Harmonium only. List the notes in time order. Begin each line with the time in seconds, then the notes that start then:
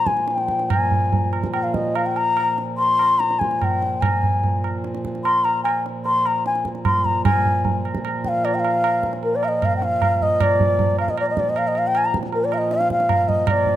Already playing: A#2 F3
0.71 A#2 F3
7.26 A#2 F3
13.47 A#2 F3